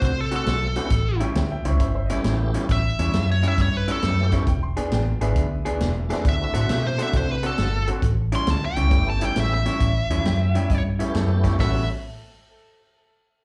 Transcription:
Already playing: D3 A3 C4 F#4
0.02 C3 C5, kick, closed hi-hat
0.20 A4
0.31 D3 A3 C4 F#4, closed hi-hat
0.36 A4
0.46 B1, snare, closed hi-hat
0.75 D3 A3 B3 C4 C#4 E4 F#4 G4, closed hi-hat
0.90 A1, kick, closed hi-hat
1.16 E4 F#5, closed hi-hat
1.20 A2 G3 C#4 E5 G5
1.35 D2 E5 G5, snare, closed hi-hat
1.51 E5 G5
1.65 C#2 A2 G3 C#4 E4 C5 E5, closed hi-hat
1.80 C5 E5, kick, closed hi-hat
1.95 C5 E5
2.06 A3 B3 D#5, closed hi-hat
2.10 A2 G3 C#4 E4 G4 E5
2.24 A1, snare, closed hi-hat
2.54 A2 G3 C#4 E4, closed hi-hat
2.69 A1 E5, kick, closed hi-hat
2.99 E2 A2 G3 C#4 E4, closed hi-hat
3.13 F#2, snare, closed hi-hat
3.32 C#5
3.43 A2 G3 C#4 E4, closed hi-hat
3.48 E5
3.58 G2 C#5, kick, closed hi-hat
3.77 B4
3.88 A2 G3 C#4 E4, closed hi-hat
3.92 A4
4.02 F#2 A3 B3 C#4 E4 G4, snare, closed hi-hat
4.32 A2 G3 C#4 E4, kick, snare, closed hi-hat
4.47 E1 G5, kick, closed hi-hat
4.63 C6
4.77 E3 B3 D4 G#4, closed hi-hat
4.92 A1 G5, snare, closed hi-hat
5.21 G#1 E3 B3 D4 G#4 B4 E5, closed hi-hat
5.36 D2, kick, closed hi-hat
5.65 E3 B3 D4 G#4, closed hi-hat
5.80 E1, snare, closed hi-hat
6.09 E3 A3 B3 C4 D4 E4 F#4 G#4, snare, closed hi-hat
6.25 D2, kick, closed hi-hat
6.29 E5
6.54 A2 D3 C4 F#4 A4, closed hi-hat
6.68 B2 A#3 C#4 D#4 F4 G4, snare, closed hi-hat
6.87 C5
6.98 D3 A3 C4 D4 E4 F#4 A4, closed hi-hat
7.02 E5
7.13 C3 C5, kick, closed hi-hat
7.31 B4
7.43 D3 C4 F#4 A4, closed hi-hat
7.58 G1, snare, closed hi-hat
7.87 D3 C4 F#4 A4, closed hi-hat
8.02 A1, kick, closed hi-hat
8.32 A2 G3 C#4 E4 C6, closed hi-hat
8.47 D2 A5, snare, closed hi-hat
8.65 G5
8.76 C#2 A2 G3 C#4 E4, closed hi-hat
8.91 G1 A3 B3 C#4 E4 G4, kick, closed hi-hat
9.10 A5
9.21 A2 G3 C#4 E4 G5, closed hi-hat
9.36 A1 E5, snare, closed hi-hat
9.54 E5
9.66 A2 G3 C#4 E4, snare, closed hi-hat
9.80 A1, kick, closed hi-hat
10.10 E2 A2 G3 C#4 E4, closed hi-hat
10.25 F#2 G5, snare, closed hi-hat
10.51 C#4 E4 F#5, closed hi-hat
10.56 A2 G3 G5
10.70 G2, kick, closed hi-hat
10.99 A2 G3 A3 B3 C#4 E4 G4 E5, closed hi-hat
11.15 F#2 A4, snare, closed hi-hat
11.44 A2 G3 C#4 E4, kick, snare, closed hi-hat
11.58 A1 A2 G3 B3 C#4 E4 F#4 A4 E5, kick, snare, open hi-hat

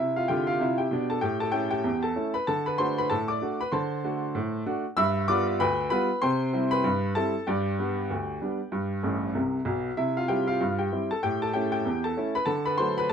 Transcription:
Already playing: E5
0.00 C3 E4
0.16 F4 F5
0.28 D3 F4 G4 G5
0.47 F4 F5
0.60 C3 E4
0.78 G4 G5
0.91 B2 D4
1.10 A4 A5
1.21 A2 G4 G5
1.40 A4 A5
1.52 A3 C#4 E4 G4 G5
1.71 G4 G5
1.84 E2
2.03 A4 A5
2.16 A3 C#4 E4
2.34 B4 B5
2.47 D3 A4 A5
2.66 B4 B5
2.78 A3 D4 F#4 C5 C6
2.98 B4 B5
3.10 A2 A4 A5
3.28 D5 D6
3.42 A3 D4 F#4
3.61 B4 B5
3.72 D3 C5 A5 C6
4.04 A3 D4 F#4
4.35 A2
4.66 A3 D4 F#4
4.97 G2 E5 B5 E6
5.28 G3 B3 F4 D5 D6
5.60 D2 B4 G5 B5
5.90 G3 B3 F4 B4 B5
6.22 C3 C5 G5 C6
6.53 G3 C4 E4
6.71 B4 B5
6.84 G2
7.15 G3 C4 E4 A4 A5
7.47 G2 G4 D5 G5
7.79 G3 B3 D4
8.10 D2
8.42 G3 B3 D4
8.72 G2
9.03 A1 A2
9.35 C2 C3
9.65 B1 B2
9.97 C3 E4 E5
10.17 F4 F5
10.28 G3 C4 E4 G4 G5
10.47 F4 F5
10.60 G2
10.79 G4 G5
10.92 G3 C4 E4
11.11 A4 A5
11.23 A2 G4 G5
11.42 A4 A5
11.53 A3 C#4 E4 G4 G5
11.72 G4 G5
11.86 E2
12.04 A4 A5
12.17 A3 C#4 E4
12.35 B4 B5
12.46 D3 A4 A5
12.66 B4 B5
12.78 F#3 A3 D4 C5 C6
12.98 B4 B5
13.09 A5

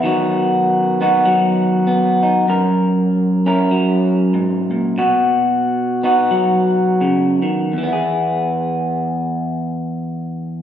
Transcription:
0.03 D#3 F#3 B3 D#4 F#4
1.01 B3 D#4 F#4
1.25 F#3
1.87 B3
2.23 D#4
2.48 F#2 A#4
3.46 C#4 E4 A#4
3.71 F#3
4.34 G#2
4.71 A#2
4.98 B2 F#4
6.03 B3 D#4 F#4
6.31 F#3
7.01 C#3
7.42 D#3
7.73 E2
7.78 E3
7.83 B3
7.88 E4
7.93 G#4

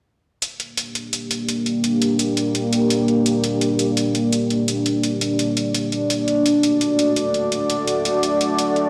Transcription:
0.42 A#3 D4 G4 D5, closed hi-hat
0.60 closed hi-hat
0.77 closed hi-hat
0.95 closed hi-hat
1.13 closed hi-hat
1.31 closed hi-hat
1.49 closed hi-hat
1.66 closed hi-hat
1.84 closed hi-hat
2.02 closed hi-hat
2.19 closed hi-hat
2.37 closed hi-hat
2.55 closed hi-hat
2.73 closed hi-hat
2.90 closed hi-hat
3.08 closed hi-hat
3.26 closed hi-hat
3.44 closed hi-hat
3.61 closed hi-hat
3.79 closed hi-hat
3.97 closed hi-hat
4.15 closed hi-hat
4.33 closed hi-hat
4.50 closed hi-hat
4.68 closed hi-hat
4.86 closed hi-hat
5.03 closed hi-hat
5.21 closed hi-hat
5.39 closed hi-hat
5.57 closed hi-hat
5.74 closed hi-hat
5.92 closed hi-hat
6.10 A3 F#4, closed hi-hat
6.28 closed hi-hat
6.46 closed hi-hat
6.63 closed hi-hat
6.81 closed hi-hat
6.99 closed hi-hat
7.16 closed hi-hat
7.34 closed hi-hat
7.52 closed hi-hat
7.70 closed hi-hat
7.87 closed hi-hat
8.05 closed hi-hat
8.23 closed hi-hat
8.41 closed hi-hat
8.59 closed hi-hat
8.76 closed hi-hat

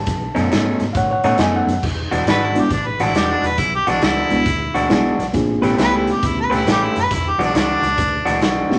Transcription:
Already playing: A5
0.06 B1, kick, snare, closed hi-hat
0.35 F#2 B2 A3 C#4 D#4, snare, closed hi-hat
0.50 G#2 B2 A3 C#4 D#4, snare, closed hi-hat
0.80 G#2, snare, closed hi-hat
0.93 A2 C#5 F5, kick, snare, closed hi-hat
0.97 F#5
1.11 C#5 F#5
1.24 A2 B2 A3 C#4 D#4 C#5 F#5, snare, closed hi-hat
1.38 F#2 B2 A3 C#4 D#4 D#5 G#5, snare, closed hi-hat
1.56 F#5
1.66 F#2, snare, closed hi-hat
1.83 E1, kick, snare, crash
2.11 E1 E3 G#3 D4 F#4, snare, closed hi-hat
2.25 G#1 E3 G#3 D4 F#4 B4, snare, closed hi-hat
2.44 E4
2.55 G#3 B3 D4 E4 F#4 G4, snare, closed hi-hat
2.70 A1 D4, kick, snare, closed hi-hat
2.87 B4
3.00 A1 E3 G#3 D4 F#4, snare, closed hi-hat
3.04 E4
3.14 E1 E3 G#3 D4 F#4 G4, snare, closed hi-hat
3.30 D4
3.42 E1 B4, snare, closed hi-hat
3.58 B1 E4, kick, snare, closed hi-hat
3.75 G4
3.87 B1 E3 G#3 D4 F#4, snare, closed hi-hat
4.01 C#2 E3 G#3 D4 E4 F#4, snare, closed hi-hat
4.30 C#2 G#3 B3 D4 E4 F#4, snare, closed hi-hat
4.45 D2, kick, snare, closed hi-hat
4.74 D2 E3 G#3 D4 F#4, snare, closed hi-hat
4.89 B1 E3 G#3 B3 D4 E4 F#4 G#4, snare, closed hi-hat
5.18 B1, snare, closed hi-hat
5.33 A1 A#3 C4 D4 F4 G#4, kick, snare, closed hi-hat
5.61 A1 A3 B3 C#4 E4 G4 B4, snare, closed hi-hat
5.77 C#2 A3 C#4 G4 B4, snare, closed hi-hat
5.81 B4
5.97 E4
6.07 G4, snare, closed hi-hat
6.23 D2 E4, kick, snare, closed hi-hat
6.41 B4
6.50 D2 A3 C#4 G4 B4, snare, closed hi-hat
6.55 E4
6.65 A1 A3 C#4 G4 B4, snare, closed hi-hat
6.71 G4
6.84 E4
6.96 F#1 B4, snare, closed hi-hat
7.10 E1 E4, kick, snare, closed hi-hat
7.29 G4
7.38 B1 E3 G#3 D4 F#4, snare, closed hi-hat
7.44 D4
7.53 C#2 E3 G#3 D4 F#4, snare, closed hi-hat
7.60 D4
7.82 C#2, snare, closed hi-hat
7.98 D2, kick, snare, closed hi-hat
8.25 D2 E3 G#3 D4 F#4, snare, closed hi-hat
8.41 B1 E3 G#3 D4 F#4, snare, closed hi-hat
8.69 B1 A3 B3 C#4 E4 G4, snare

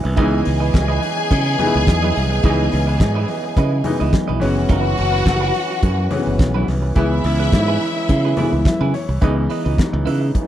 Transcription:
Already playing: E3 F#3 G#3 B3 C#4 D4 D#4 B4
0.04 C2, muted clean electric guitar stroke
0.16 C#2 C#3 D#3 G#3 B3 D#4 E4 G#4 B4 D#5 G#5, kick, closed hi-hat, muted conga
0.22 E3
0.45 C#2, muted clean electric guitar stroke, open hi-hat
0.60 E4 B4 D#5
0.74 C#2, muted clean electric guitar stroke, kick, snare, closed hi-hat, high conga
0.88 E4 B4 D#5
1.02 muted clean electric guitar stroke, open hi-hat, muted conga
1.17 muted clean electric guitar stroke
1.31 C#3, muted clean electric guitar stroke, kick, closed hi-hat, muted conga
1.46 muted clean electric guitar stroke
1.58 E3 G#3 B3 D#4, open hi-hat, muted conga, low conga
1.66 E4
1.75 C#2, muted clean electric guitar stroke
1.87 E2, muted clean electric guitar stroke, kick, snare, closed hi-hat, high conga
2.03 E4 B4 D#5, high conga
2.16 C2, muted clean electric guitar stroke, snare, open hi-hat
2.30 muted clean electric guitar stroke
2.43 C#2 E3 G#3 B3 D#4 E4 B4 D#5, kick, closed hi-hat, muted conga
2.72 C#2, muted clean electric guitar stroke, open hi-hat
2.87 E4 B4 D#5
3.00 G#2, muted clean electric guitar stroke, kick, snare, closed hi-hat, high conga
3.15 E4 B4 D#5
3.28 muted clean electric guitar stroke, open hi-hat, muted conga
3.44 muted clean electric guitar stroke
3.56 C#3 E4 B4 D#5, kick, closed hi-hat, muted conga
3.72 muted clean electric guitar stroke
3.84 E3 G#3 B3 D#4, muted clean electric guitar stroke, open hi-hat, muted conga, low conga
4.00 C#2 E4 B4 D#5
4.13 muted clean electric guitar stroke, kick, snare, closed hi-hat, high conga
4.28 B1 E4 B4 D#5, high conga
4.40 F#1 E3 F#3 G#3 B3 C#4 F#4 B4 F#5, muted clean electric guitar stroke, open hi-hat
4.56 F1, muted clean electric guitar stroke
4.69 F#1 D#4 F4 A#4, kick, closed hi-hat, muted conga
4.80 E4 F#4 B4
4.97 F#1, muted clean electric guitar stroke, open hi-hat
5.12 E4 F#4 B4
5.26 F#1, muted clean electric guitar stroke, kick, snare, closed hi-hat, high conga
5.41 E4 F#4 B4
5.54 muted clean electric guitar stroke, open hi-hat, muted conga
5.69 muted clean electric guitar stroke
5.83 F#2, muted clean electric guitar stroke, kick, closed hi-hat, muted conga
5.98 muted clean electric guitar stroke
6.11 E3 G#3 B3 C#4, open hi-hat, muted conga, low conga
6.26 F#1, muted clean electric guitar stroke
6.39 B1, muted clean electric guitar stroke, kick, snare, closed hi-hat, high conga
6.54 E4 F#4 B4, high conga
6.68 C2, muted clean electric guitar stroke, snare, open hi-hat
6.82 muted clean electric guitar stroke
6.95 C#2 C#3 E3 G#3 B3 E4 G#4 B4 E5, kick, closed hi-hat, muted conga
7.24 C#2, open hi-hat
7.40 E4 G#4 B4
7.52 G#2, kick, snare, closed hi-hat, high conga
7.68 E4 G#4 B4
7.81 muted clean electric guitar stroke, open hi-hat, muted conga
7.96 muted clean electric guitar stroke
8.09 C#3, muted clean electric guitar stroke, kick, closed hi-hat, muted conga
8.25 E4 G#4 B4
8.37 E3 G#3 B3 E4 G#4 B4, open hi-hat, muted conga, low conga
8.53 C#2, muted clean electric guitar stroke
8.65 E5, muted clean electric guitar stroke, kick, snare, closed hi-hat, high conga
8.81 C#3 E4 G#4 B4, high conga
8.94 C#5, muted clean electric guitar stroke, snare, open hi-hat
9.09 C2, muted clean electric guitar stroke
9.21 C#2 C#3 E3 G#3 B3 D#4 E4 B4 D#5, kick, closed hi-hat, muted conga
9.36 muted clean electric guitar stroke
9.50 E4 B4 D#5, open hi-hat
9.64 C#2 E4 B4 D#5
9.78 muted clean electric guitar stroke, kick, snare, closed hi-hat, high conga
9.93 C#2, muted clean electric guitar stroke
10.05 C#3 E4 B4 E5, open hi-hat, muted conga
10.21 muted clean electric guitar stroke
10.35 muted fingered electric bass stroke, kick, closed hi-hat, muted conga

